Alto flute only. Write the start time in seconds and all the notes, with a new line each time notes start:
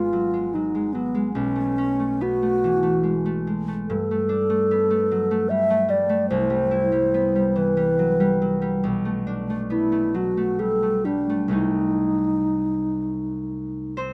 Already playing: F4
0.54 D#4
0.93 B3
1.34 C#4
2.22 F#4
3.88 A4
5.49 E5
5.90 D5
6.30 C5
7.57 B4
9.71 E4
10.16 F#4
10.60 A4
11.05 D4
11.53 D#4